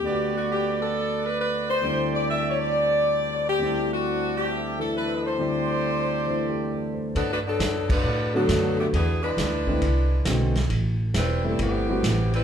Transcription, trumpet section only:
X:1
M:4/4
L:1/8
Q:"Swing" 1/4=135
K:Dmix
V:1 name="Trumpet section"
[FBd]8 | [GAcd]3 [Ac]4- [Ac] | [DAcd]4 [cde]4 | [GAcd]8 |
z8 | z8 | z8 |]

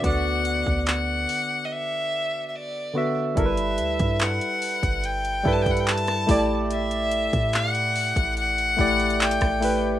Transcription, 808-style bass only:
X:1
M:4/4
L:1/16
Q:1/4=72
K:Glyd
V:1 name="808-style bass" clef=bass
D,,3 D,,3 z8 z2 | G,,,2 D,, G,,2 z2 G,,,3 G,,4 A,,,2- | A,,,3 A,,4 A,,,3 A,,,3 A,,,3 |]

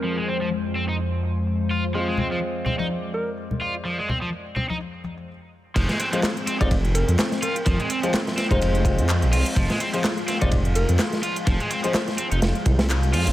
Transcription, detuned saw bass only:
X:1
M:4/4
L:1/16
Q:"Swing 16ths" 1/4=126
K:Fdor
V:1 name="Detuned saw bass" clef=bass
z16 | z16 | z16 | F,,, z6 F,,,4 F,, z4 |
F,,, z6 F,,, F,,,3 F,,2 B,,, C,, z | F,,, z6 F,,,4 F,, z4 | F,,, z6 F,,, F,,, z C,,4 F,, F,,, |]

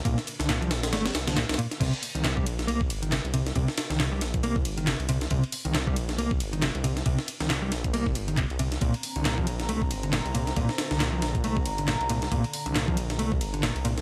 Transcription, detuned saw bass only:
X:1
M:4/4
L:1/16
Q:"Swing 16ths" 1/4=137
K:Cm
V:1 name="Detuned saw bass" clef=bass
C,, z2 C,,3 B,,,2 G,,,2 C,,3 C,, z2 | C,, z2 C,,3 B,,,2 C,,2 G,,,3 C,,3 | C,, z2 C,,3 B,,,2 C,,2 G,,,3 C,,3 | C,, z2 C,,3 B,,,2 C,,2 G,,,3 C,,3 |
C,, z2 C,,3 B,,,2 C,,2 G,,,3 C,,3 | C,, z2 C,,3 B,,,2 C,,2 G,,,3 C,,3 | C,, z2 C,,3 B,,,2 C,,2 G,,,3 C,,3 | C,, z2 C,,3 B,,,2 C,,2 G,,,3 C,,3 |]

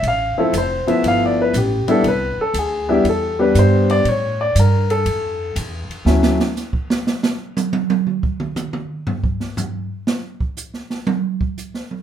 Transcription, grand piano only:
X:1
M:4/4
L:1/8
Q:"Swing" 1/4=120
K:Am
V:1 name="Grand piano"
f A c e (3f d B G A | B A ^G =G A B c d | ^c d _B A3 z2 | z8 |
z8 | z8 |]
V:2 name="Grand piano"
z [F,A,CE] z [F,A,B,E]3 z [G,B,DE] | z3 [G,B,DE] z [G,B,DG]3 | z8 | [^F,A,^CE] z6 z |
z8 | z8 |]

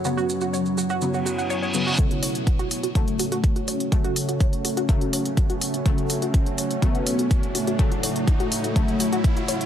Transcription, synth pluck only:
X:1
M:4/4
L:1/16
Q:1/4=124
K:F#m
V:1 name="Synth pluck"
F F z F c z F F z F F f c c z F | z F c z F F z F c z F F z F c z | F F z F c z F F z F c z F F z F | c z F F z F c z F F z F c z F F |
z F c z F F z F c z F F z F c z |]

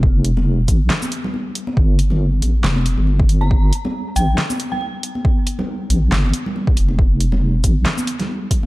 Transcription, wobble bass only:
X:1
M:4/4
L:1/16
Q:"Swing 16ths" 1/4=138
K:Fmix
V:1 name="Wobble bass" clef=bass
F,,,6 A,,,2 z8 | G,,,6 A,,,2 F,,,3 G,,,4- G,,,- | G,,,2 z4 A,,,2 z8 | z6 A,,,2 G,,,2 z4 F,,,2- |
F,,,6 A,,,2 z8 |]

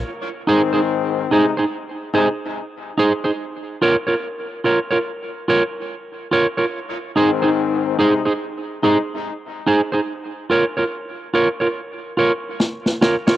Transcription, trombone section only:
X:1
M:4/4
L:1/16
Q:"Swing 16ths" 1/4=72
K:Ab
V:1 name="Trombone section" clef=bass
z2 [A,,E,C]4 [C,A,E] z3 [C,A,E] z4 z | z16 | z2 [A,,E,C]4 [C,A,E] z3 [C,A,E] z4 z | z16 |]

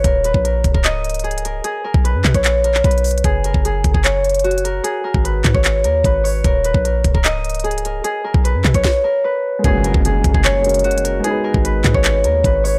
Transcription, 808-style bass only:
X:1
M:4/4
L:1/16
Q:1/4=150
K:F#
V:1 name="808-style bass" clef=bass
D,,,3 A,,,3 D,,, C,,,8- C,,, | z3 B,,,2 F,, B,, A,,,4- A,,, B,,,4 | F,,,3 F,,,3 F,,, F,,,8- F,,, | z3 G,,,3 G,, G,,,3 D,,2 G,,,4 |
D,,,3 A,,,3 D,,, C,,,8- C,,, | z3 B,,,2 F,, B,, A,,, z8 | F,,,3 F,,,3 F,,, F,,,8- F,,, | z3 G,,,3 G,, G,,,3 D,,2 G,,,4 |]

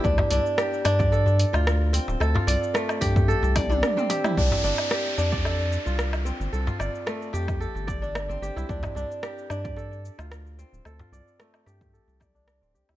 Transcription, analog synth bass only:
X:1
M:4/4
L:1/16
Q:"Swing 16ths" 1/4=111
K:Ddor
V:1 name="Analog synth bass" clef=bass
D,, z C,, z3 G,,4 z D,,3 z D,,, | D,, z C,, z3 G,,2 z C,,3 z4 | C,, z G,,, z3 F,,4 z C,,3 z G,,, | C,, z G,,, z3 F,,2 z G,,,4 G,,, G,,, C,, |
D,, z C,, z3 G,,4 z D,,3 z D,,, | D,, z C,, z3 G,,2 z C,,4 D,,, C,, D,, |]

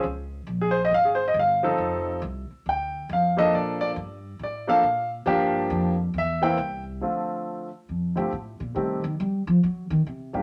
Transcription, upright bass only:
X:1
M:4/4
L:1/8
Q:"Swing" 1/4=138
K:F
V:1 name="Upright bass" clef=bass
_D,,2 B,,,2 _A,,,2 G,,,2 | F,,,2 C,, z D,,2 F,,2 | B,,2 G,,2 A,,2 B,,2 | G,,2 F,,2 E,,2 C,,2 |
z4 F,, G,, A,, B,, | C, _E, G, F, _G, E, C, _A,, |]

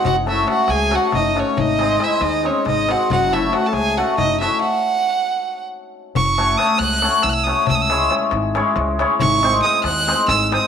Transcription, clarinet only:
X:1
M:7/8
L:1/16
Q:1/4=138
K:none
V:1 name="Clarinet"
^F2 E2 F2 ^G2 F2 ^D2 ^C2 | ^D4 E2 D2 ^C2 D2 ^F2 | ^F2 E2 F3/2 A/2 ^G2 F2 ^D2 E2 | z12 z2 |
z12 z2 | z12 z2 | z12 z2 |]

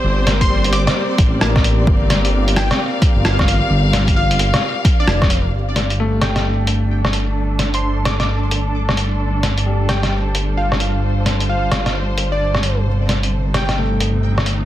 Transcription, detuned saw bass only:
X:1
M:4/4
L:1/16
Q:"Swing 16ths" 1/4=131
K:Gm
V:1 name="Detuned saw bass" clef=bass
G,,,6- G,,, z3 A,,,6 | G,,,6- G,,, z4 G,,,4 z | G,,,6- G,,, z4 z F,,,4 | G,,,16- |
G,,,16- | G,,,16- | G,,,16 | G,,,16 |]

